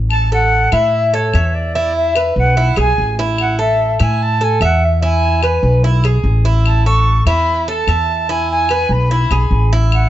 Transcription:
Already playing: upright bass A1
0.10 flute A5, claves
0.32 cuban tres A4, flute F#5
0.72 upright bass A2, cuban tres E4, flute E5, claves
1.13 cuban tres A4, flute C#5
1.34 upright bass E2, cuban tres E5, claves
1.54 flute D5
1.75 cuban tres E4
1.96 flute E5
2.16 cuban tres B4, claves
2.36 upright bass B1, flute F#5
2.57 cuban tres E4
2.76 upright bass B1, cuban tres G#4, flute G#5, claves
2.98 upright bass A1
3.19 cuban tres E4
3.38 flute F#5, claves
3.59 cuban tres A4, flute E5
3.99 upright bass A2, cuban tres E4, flute G#5, claves
4.22 flute A5
4.41 cuban tres A4, flute G#5
4.61 upright bass E2, cuban tres E5, flute F#5, claves
4.84 flute E5
5.02 cuban tres E4, flute G#5
5.43 cuban tres B4, claves
5.63 upright bass B1
5.84 cuban tres E4
6.04 cuban tres G#4, claves
6.24 upright bass A1
6.45 cuban tres E4
6.66 flute A5, claves
6.86 cuban tres A4, flute C#6
7.25 upright bass E2, cuban tres E4, flute B5, claves
7.68 cuban tres A4, flute A5
7.87 upright bass E2, cuban tres E5, claves
8.29 cuban tres E4, flute G#5
8.51 flute G#5
8.69 cuban tres B4, claves
8.89 upright bass B1, flute B5
9.11 cuban tres E4
9.31 upright bass B1, cuban tres G#4, claves
9.51 upright bass A1
9.73 cuban tres E4
9.92 flute F#5, claves

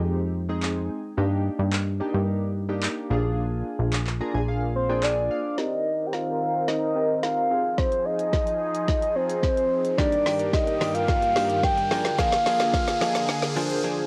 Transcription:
Already playing: analog synth bass F2, synth keys G#3 C4 D#4 G4
0.49 synth keys G#3 C4 D#4 G#4
0.63 clap
1.17 analog synth bass G2, synth keys A#3 D4 D#4 G4
1.59 analog synth bass G2
1.73 clap
2.00 synth keys A#3 D4 D#4 G4
2.14 analog synth bass G2
2.69 synth keys A#3 D4 D#4 G4
2.83 clap
3.10 analog synth bass A#1, synth keys A#3 D4 F4 G#4
3.79 analog synth bass A#1
3.93 clap
4.07 clap
4.20 synth keys A#3 D4 F4 G#4 A#5
4.34 analog synth bass A#1, synth keys G#5
4.48 synth keys F5
4.76 soft synth lead C5
4.89 synth keys A#3 D4 F4 G#4 G5
5.03 soft synth lead D5, synth keys G#5, clap
5.31 synth keys F5
5.58 analog synth pad D#3 C4 A#4, synth keys C4 D#4 G4 A#4, soft synth lead D#5, snare, riser
6.06 soft synth lead G5
6.13 soft synth lead F5, snare
6.68 soft synth lead D#5, snare
6.96 synth keys C4 D#4 G4 A#4
7.23 soft synth lead F5, snare
7.50 analog synth pad F3 D#4 G#4, synth keys C4 D#4 F4 G#4
7.78 soft synth lead C5, kick, snare
7.92 closed hi-hat
8.05 soft synth lead D#5
8.19 closed hi-hat
8.33 kick, snare
8.47 closed hi-hat
8.75 closed hi-hat
8.88 kick, snare
9.02 closed hi-hat
9.15 synth keys C4 D#4 F4 G#4, soft synth lead C5
9.30 closed hi-hat
9.43 kick, snare
9.57 closed hi-hat
9.85 closed hi-hat
9.98 analog synth pad G2 D#3 A#3 G4, clean electric guitar D#3 A#3 D4 G4, synth keys G3 D4 D#4 G4 A#4, soft synth lead D5, kick, snare
10.12 closed hi-hat
10.26 clean electric guitar D#3 A#3 D4 G4, snare, open hi-hat
10.39 clean electric guitar D#3 A#3 D4 G4, closed hi-hat
10.53 soft synth lead D#5, muted clean electric guitar stroke, kick, snare
10.67 muted clean electric guitar stroke, closed hi-hat
10.81 clean electric guitar D#3 A#3 D4 G4, snare, open hi-hat
10.94 clean electric guitar D#3 A#3 D4 G4, soft synth lead F5, closed hi-hat
11.08 kick, snare
11.22 muted clean electric guitar stroke, closed hi-hat
11.36 clean electric guitar D#3 A#3 D4 G4, synth keys G3 D4 D#4 G4 A#4, snare, open hi-hat
11.50 muted clean electric guitar stroke, closed hi-hat
11.63 soft synth lead G5, muted clean electric guitar stroke, kick, snare
11.77 muted clean electric guitar stroke, closed hi-hat
11.91 analog synth pad D3 A#3 G#4, clean electric guitar F3 A#3 D4 G#4, synth keys D4 F4 G#4 A#4, snare, open hi-hat
12.05 muted clean electric guitar stroke, snare, closed hi-hat
12.18 clean electric guitar F3 A#3 D4 G#4, soft synth lead F5, kick, snare, shaker
12.32 snare, closed hi-hat, shaker
12.46 clean electric guitar F3 A#3 D4 G#4, snare, open hi-hat, shaker
12.60 clean electric guitar F3 A#3 D4 G#4, snare, closed hi-hat, shaker
12.74 kick, snare, shaker
12.88 muted clean electric guitar stroke, snare, closed hi-hat, shaker
13.01 clean electric guitar F3 A#3 D4 G#4, synth keys D#5, snare, open hi-hat, shaker
13.15 clean electric guitar F3 A#3 D4 G#4, snare, closed hi-hat, shaker
13.28 synth keys F5, muted clean electric guitar stroke, snare, shaker
13.42 muted clean electric guitar stroke, snare, closed hi-hat, shaker
13.56 clean electric guitar F3 A#3 D4 G#4, synth keys D4 F4 G#4 C5 G5, open hi-hat, shaker
13.70 muted clean electric guitar stroke, closed hi-hat, shaker
13.84 clean electric guitar F3 A#3 D4 G#4, synth keys G#5
13.97 muted clean electric guitar stroke

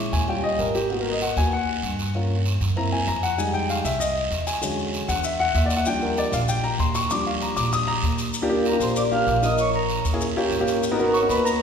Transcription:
Already playing: grand piano G#3 C#4 E4
0.13 upright bass D#2, grand piano G#5, short guiro
0.28 grand piano G3 C#4 F4 G5, long guiro
0.44 grand piano D#5
0.59 upright bass G#1, grand piano A#4, short guiro
0.75 grand piano G4, short guiro
0.90 grand piano A#3 B3 F#4, long guiro
1.01 grand piano A#4
1.12 grand piano D#5
1.21 grand piano F#5, short guiro
1.37 upright bass D#2, grand piano A#3 B3 F#4 G#5, short guiro
1.52 grand piano F#5, long guiro
1.83 upright bass G2, short guiro
1.99 short guiro
2.14 grand piano A#3 C#4 F4, long guiro
2.46 short guiro
2.61 upright bass F#2, short guiro
2.76 grand piano A#3 C4 E4 A#5, long guiro
2.92 grand piano G#5
3.07 upright bass F2, grand piano A#5, short guiro
3.23 grand piano F#5, short guiro
3.38 grand piano G3 G#3 D#4 G#5, long guiro, maracas
3.54 grand piano G5, maracas
3.69 grand piano F5, short guiro, maracas
3.85 upright bass C2, grand piano E5, short guiro, maracas
4.00 grand piano D#5, long guiro, maracas
4.17 maracas
4.31 upright bass E2, short guiro, maracas
4.47 grand piano G#5, short guiro, maracas
4.62 grand piano D3 F#3 G#3 C#4, long guiro, maracas
4.78 maracas
4.93 short guiro, maracas
5.08 upright bass E2, grand piano F#5, short guiro, maracas
5.24 grand piano E5, long guiro, maracas
5.40 grand piano F#5, maracas
5.55 upright bass D#2, grand piano E5, short guiro, maracas
5.66 grand piano D5
5.70 short guiro, maracas
5.77 grand piano F#5
5.85 grand piano F3 G3 D4 G5, long guiro, maracas
6.01 grand piano A#4, maracas
6.17 grand piano D5, short guiro, maracas
6.32 upright bass A#1, grand piano F5, short guiro, maracas
6.48 grand piano G5, long guiro, maracas
6.64 grand piano A#5, maracas
6.79 upright bass D#2, grand piano C6, short guiro, maracas
6.95 grand piano C#6, short guiro, maracas
7.10 grand piano F3 G3 D4 D6, long guiro, maracas
7.26 grand piano F5, maracas
7.41 grand piano A#5, short guiro, maracas
7.56 upright bass A#1, grand piano D6, short guiro, maracas
7.73 grand piano D#6, long guiro, maracas
7.88 grand piano A#5, maracas
8.03 upright bass D#2, short guiro, maracas
8.18 short guiro, maracas
8.34 long guiro, maracas
8.42 grand piano A#3 D4 F4 G4
8.49 grand piano A#3 D4 F4 G4, maracas
8.65 vibraphone A#4, flute A#5, short guiro, maracas
8.73 grand piano A#3 D4 F4 G4
8.80 upright bass A#1, vibraphone C5, flute C6, short guiro, maracas
8.96 vibraphone D5, flute D6, long guiro, maracas
9.11 grand piano A#3 D4 F4 G4, vibraphone F5, flute F6, maracas
9.27 upright bass A#1, short guiro, maracas
9.42 grand piano A#3 D4 F4 A#4, vibraphone D#5, flute D#6, short guiro, maracas
9.58 vibraphone C#5, flute C#6, long guiro, maracas
9.74 vibraphone A#4, flute A#5, maracas
9.90 short guiro, maracas
10.05 upright bass D#2, short guiro, maracas
10.13 grand piano A#3 C#4 E4 G#4
10.21 long guiro, maracas
10.37 grand piano A#3 C#4 F4 G4, maracas
10.51 upright bass G#1, short guiro, maracas
10.60 grand piano A#3 C#4 F4 G4
10.68 short guiro, maracas
10.83 long guiro, maracas
10.91 grand piano B3 D#4 F#4 A#4
10.99 grand piano B3 D#4 F#4 A#4, maracas
11.14 vibraphone C#5, flute C#6, short guiro, maracas
11.22 grand piano B3 D#4 F#4 A#4
11.29 upright bass D#2, vibraphone B4, flute B5, short guiro, maracas
11.45 vibraphone A#4, flute A#5, long guiro, maracas

